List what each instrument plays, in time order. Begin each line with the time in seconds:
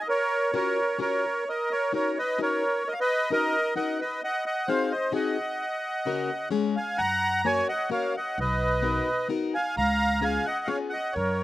0.01 accordion D#5
0.08 accordion A#4 C#5
0.54 steel-string acoustic guitar C#4 F4 F#4 A#4, accordion A#4 C#5
0.98 steel-string acoustic guitar C#4 F4 F#4 A#4, accordion A#4 C#5
1.49 accordion A#4 D#5
1.71 accordion A#4 C#5
1.92 steel-string acoustic guitar C#4 D#4 F#4 A#4, accordion A#4 C#5
2.19 accordion B4 D#5
2.38 steel-string acoustic guitar C#4 D#4 F#4 A#4, accordion A#4
2.43 accordion C#5
2.87 accordion A#4 D#5
2.93 accordion F5
3.00 accordion B4 D#5
3.30 steel-string acoustic guitar C#4 D#4 F#4 A#4, accordion A#4 D#5
3.75 steel-string acoustic guitar C#4 D#4 F#4 A#4, accordion D#5 F#5
4.00 accordion B4 D#5
4.24 accordion D#5 F#5
4.46 accordion D#5 F#5
4.68 steel-string acoustic guitar C4 D#4 F#4 G#4, accordion C5 F5
4.92 accordion C5 D#5
5.12 steel-string acoustic guitar C4 D#4 F#4 G#4, accordion D#5 F#5
6.05 steel-string acoustic guitar C#3 A#3 C#4 F#4 A#4
6.51 steel-string acoustic guitar G#3 C#4 F4 G#4
6.76 accordion F5 G#5
6.98 upright bass F#2, accordion F#5 A#5
7.45 steel-string acoustic guitar A#3 C#4 F#4 A#4, accordion C#5 G#5
7.69 accordion D#5 F#5
7.90 steel-string acoustic guitar A#3 C#4 F#4 A#4, accordion C#5 F5
8.16 accordion D#5 F#5
8.38 upright bass B1, accordion B4 D#5
8.82 steel-string acoustic guitar B3 D#4 F#4 A#4
9.29 steel-string acoustic guitar B3 D#4 F#4 A#4
9.54 accordion F5 G#5
9.77 upright bass C#2, accordion F5 A#5
10.21 steel-string acoustic guitar B3 C#4 F4 G#4, accordion F5 G#5
10.45 accordion D#5 F#5
10.65 steel-string acoustic guitar B3 C#4 F4 G#4, accordion C#5 F5
10.90 accordion D#5 F#5
11.13 upright bass F#2, accordion A#4 C#5